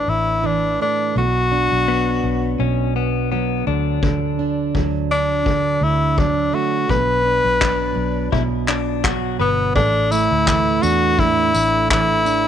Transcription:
0.00 1.16 A2 medium
0.00 0.42 E3 medium
0.00 0.11 D4 medium
0.00 1.51 D4 medium
0.08 0.76 A1 medium
0.08 0.47 E4 medium
0.44 1.24 E3 medium
0.44 0.81 D4 medium
0.81 1.24 A3 soft
0.81 1.14 D4 medium
1.15 1.67 B1 medium
1.15 2.59 B2 medium
1.15 2.56 F#4 medium
1.52 4.39 D4 medium
1.72 2.20 B1 medium
1.88 3.32 F#3 medium
1.88 2.62 B3 medium
2.24 2.57 B1 medium
2.59 3.63 B1 medium
2.59 3.66 B2 medium
2.59 2.93 C#4 medium
2.96 3.30 B3 medium
3.32 4.74 F#3 medium
3.32 3.67 B3 medium
3.67 4.71 D2 medium
3.67 4.02 D3 medium
3.67 4.90 D4 medium
4.03 5.46 D3 medium
4.03 kick loud
4.39 7.25 D4 medium
4.75 5.78 D2 medium
4.75 6.17 F#3 medium
4.75 kick medium
5.11 5.85 D4 medium
5.46 6.89 D3 medium
5.46 kick medium
5.81 6.49 D2 loud
5.81 6.20 E4 medium
6.18 7.61 F#3 medium
6.18 6.56 D4 medium
6.18 kick loud
6.53 6.97 A3 medium
6.53 6.90 F#4 medium
6.89 7.41 B1 medium
6.89 8.32 B2 medium
6.89 8.29 B4 medium
6.89 kick loud
7.25 10.50 D4 medium
7.44 7.92 B1 medium
7.61 9.02 F#3 medium
7.61 8.29 D4 medium
7.61 kick medium
7.61 clap loud
7.96 8.29 B1 medium
8.32 9.36 B1 medium
8.32 9.84 B2 medium
8.32 8.42 E4 medium
8.32 kick medium
8.68 9.05 D4 medium
8.68 clap medium
9.04 9.83 F#3 medium
9.04 9.39 F#4 medium
9.04 kick loud
9.04 clap loud
9.39 9.72 G1 medium
9.39 9.83 B3 medium
9.39 9.74 B3 medium
9.39 9.49 B4 medium
9.75 10.27 A1 loud
9.75 11.18 A2 medium
9.75 10.13 D4 medium
9.75 12.48 A4 medium
9.75 kick loud
10.11 11.53 A3 medium
10.11 10.84 E4 loud
10.11 tambourine medium
10.31 10.79 D2 medium
10.47 11.89 E3 medium
10.47 kick medium
10.47 clap medium
10.82 11.51 E2 medium
10.82 12.25 D4 medium
10.82 11.21 F#4 loud
10.82 tambourine medium
11.19 12.48 A2 medium
11.19 11.90 E4 loud
11.19 kick loud
11.54 12.48 A1 medium
11.54 12.48 A3 medium
11.54 tambourine medium
11.90 12.48 E3 medium
11.90 12.48 E4 loud
11.90 kick loud
11.90 clap loud
12.25 12.48 D4 medium
12.25 tambourine medium

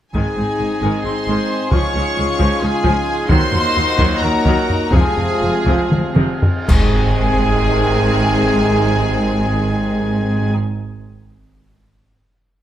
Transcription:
0.13 0.23 G#1 medium
0.13 0.23 G#2 soft
0.13 3.27 G#2 soft
0.13 0.35 D#3 soft
0.13 0.35 G#3 soft
0.13 3.27 G#3 soft
0.13 1.68 C4 soft
0.13 1.69 C4 soft
0.13 1.68 D#4 soft
0.13 3.26 G#4 soft
0.13 3.27 G#4 soft
0.13 1.01 G#4 medium
0.13 3.26 G#5 soft
0.13 1.01 G#5 medium
0.13 taiko medium
0.37 0.45 G#1 soft
0.37 0.46 G#2 soft
0.37 0.45 G#3 soft
0.37 0.45 C4 soft
0.59 0.68 G#1 soft
0.59 0.68 G#2 soft
0.59 0.67 G#3 soft
0.82 0.90 G#1 medium
0.82 0.90 G#2 medium
0.82 1.03 D#3 medium
0.82 1.03 G#3 soft
1.05 1.13 G#1 soft
1.05 1.13 G#2 soft
1.05 1.13 G#3 soft
1.05 1.13 C4 soft
1.05 1.72 C5 medium
1.05 1.72 C6 medium
1.28 1.36 G#1 medium
1.28 1.36 G#2 medium
1.28 1.48 D#3 medium
1.28 1.49 G#3 medium
1.71 1.80 C#2 medium
1.71 1.93 F3 medium
1.71 3.27 C#4 medium
1.71 3.31 C#4 medium
1.71 3.27 F4 medium
1.71 3.30 F4 medium
1.71 3.31 F4 medium
1.71 2.61 C#5 medium
1.71 2.61 C#6 medium
1.71 taiko medium
1.94 2.02 C#2 soft
1.94 2.03 C#2 soft
1.94 2.03 F3 soft
1.94 2.03 C#4 soft
2.17 2.25 C#2 soft
2.17 2.26 F3 soft
2.17 2.26 G#3 soft
2.39 2.48 C#2 medium
2.39 2.61 F3 medium
2.39 taiko medium
2.62 2.70 C#2 medium
2.62 2.71 C#2 soft
2.62 2.71 F3 medium
2.62 2.71 C#4 soft
2.62 3.30 G#4 medium
2.62 3.30 G#5 medium
2.84 2.93 C#2 medium
2.84 3.06 F3 medium
2.84 taiko medium
3.28 3.38 D#2 medium
3.28 3.39 D#2 medium
3.28 4.93 A#2 medium
3.28 3.51 D#3 medium
3.28 3.51 F#3 medium
3.28 4.93 F#3 medium
3.28 4.93 A#3 medium
3.28 4.90 A#3 medium
3.28 4.89 D#4 medium
3.28 4.90 D#4 medium
3.28 4.93 D#4 medium
3.28 4.93 F#4 medium
3.28 4.93 A#4 medium
3.28 4.20 C5 medium
3.28 4.93 F#5 medium
3.28 4.20 C6 loud
3.28 taiko medium
3.52 3.61 D#2 medium
3.52 3.60 F#3 medium
3.52 3.61 A#3 medium
3.52 taiko low soft
3.75 3.84 D#2 medium
3.75 3.84 F#3 medium
3.98 4.07 D#2 medium
3.98 4.21 D#3 medium
3.98 4.21 F#3 medium
3.98 taiko medium
4.21 4.30 D#2 medium
4.21 4.31 F#3 medium
4.21 4.31 A#3 medium
4.21 4.93 A#4 medium
4.21 4.93 A#5 medium
4.45 4.53 D#2 medium
4.45 4.68 D#3 medium
4.45 4.68 F#3 medium
4.45 taiko medium
4.70 taiko low medium
4.92 5.01 F1 medium
4.92 5.01 F2 medium
4.92 6.40 C3 medium
4.92 5.16 C3 medium
4.92 6.40 F3 medium
4.92 5.15 F3 medium
4.92 6.43 G#3 medium
4.92 6.46 C4 medium
4.92 6.68 C4 medium
4.92 6.43 F4 medium
4.92 6.70 F4 medium
4.92 6.46 G#4 medium
4.92 5.90 G#4 medium
4.92 6.69 G#4 medium
4.92 6.70 F5 medium
4.92 5.92 G#5 medium
4.92 taiko loud
5.17 5.25 F1 medium
5.17 5.25 F2 medium
5.17 5.25 F3 soft
5.17 5.25 G#3 medium
5.17 taiko low medium
5.41 5.49 F1 soft
5.41 5.50 F2 medium
5.41 5.49 F3 medium
5.66 5.74 F1 medium
5.66 5.74 F2 medium
5.66 5.90 C3 medium
5.66 5.90 F3 medium
5.66 taiko medium
5.91 5.99 F1 medium
5.91 5.99 F2 medium
5.91 5.99 F3 soft
5.91 5.99 G#3 medium
5.91 taiko mid medium
6.16 6.25 F1 medium
6.16 6.25 F2 medium
6.16 6.42 C3 medium
6.16 6.42 F3 medium
6.16 taiko mid medium
6.42 taiko low medium
6.67 10.53 G#1 medium
6.67 10.52 G#2 medium
6.67 10.51 C3 medium
6.67 10.51 D#3 medium
6.67 10.52 D#3 medium
6.67 10.52 G#3 medium
6.67 10.53 G#3 medium
6.67 10.54 C4 medium
6.67 10.53 D#4 medium
6.67 10.53 G#4 medium
6.67 10.54 G#4 medium
6.67 10.52 G#5 medium
6.67 10.53 G#5 medium
6.67 concert bass drum medium
6.67 taiko loud
6.67 crash medium

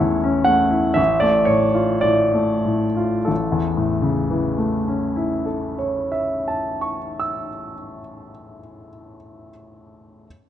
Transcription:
0.00 0.91 A1 soft
0.00 0.39 E2 soft
0.00 0.47 A3 soft
0.00 0.24 C#4 soft
0.00 0.15 E4 soft
0.00 0.48 C#5 medium
0.24 0.63 C#4 soft
0.44 0.87 A3 soft
0.44 0.96 F#5 medium
0.71 0.97 E4 soft
0.94 3.24 A1 soft
0.94 1.22 E5 medium
1.20 1.65 A3 soft
1.20 1.48 D5 medium
1.45 1.93 A2 soft
1.45 2.03 C#5 medium
1.75 2.22 F4 soft
2.01 2.53 A2 soft
2.01 3.27 D5 medium
2.34 2.86 A3 soft
2.65 3.16 A2 soft
2.97 3.28 F4 soft
3.25 6.98 A1 soft
3.25 5.44 A4 soft
3.52 7.22 E2 soft
3.77 7.47 A2 soft
4.02 7.72 C#3 soft
4.30 8.01 E3 soft
4.58 8.28 A3 soft
4.88 8.58 C#4 soft
5.16 8.87 E4 soft
5.46 9.16 A4 soft
5.79 9.49 C#5 soft
6.12 9.49 E5 soft
6.48 9.50 A5 soft
6.81 9.50 C#6 soft
7.20 9.51 E6 soft

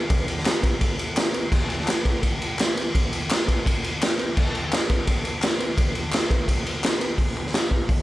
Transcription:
0.10 kick loud
0.10 ride medium
0.28 ride medium
0.38 snare soft
0.45 snare loud
0.45 clap medium
0.45 ride medium
0.63 kick medium
0.63 ride medium
0.81 kick medium
0.81 ride medium
0.99 ride medium
1.16 snare loud
1.16 clap loud
1.16 ride medium
1.34 ride medium
1.52 kick loud
1.52 crash medium
1.70 ride medium
1.80 snare soft
1.87 snare medium
1.87 clap loud
1.87 ride medium
2.05 kick medium
2.05 ride medium
2.23 kick medium
2.23 ride medium
2.42 ride medium
2.59 snare loud
2.59 clap loud
2.59 ride loud
2.77 ride medium
2.95 kick loud
2.95 ride medium
3.13 ride medium
3.30 snare loud
3.30 clap loud
3.30 ride loud
3.48 kick medium
3.48 ride medium
3.66 kick medium
3.66 ride loud
3.84 ride medium
4.02 snare loud
4.02 clap loud
4.02 ride loud
4.19 ride medium
4.37 kick loud
4.37 crash medium
4.55 ride medium
4.72 snare loud
4.72 clap loud
4.72 ride medium
4.90 kick medium
4.90 ride medium
5.07 kick medium
5.07 ride medium
5.25 ride medium
5.42 snare loud
5.42 clap loud
5.42 ride loud
5.60 ride medium
5.78 kick loud
5.78 ride medium
5.95 ride medium
6.12 snare loud
6.12 clap medium
6.12 ride medium
6.30 kick medium
6.30 ride medium
6.48 kick medium
6.48 ride medium
6.66 ride medium
6.83 snare loud
6.83 clap loud
6.83 ride loud
7.01 ride medium
7.18 kick medium
7.18 open hi-hat soft
7.37 clap medium
7.46 snare soft
7.53 snare loud
7.53 clap medium
7.53 open hi-hat soft
7.71 kick medium
7.89 kick loud
7.89 open hi-hat medium

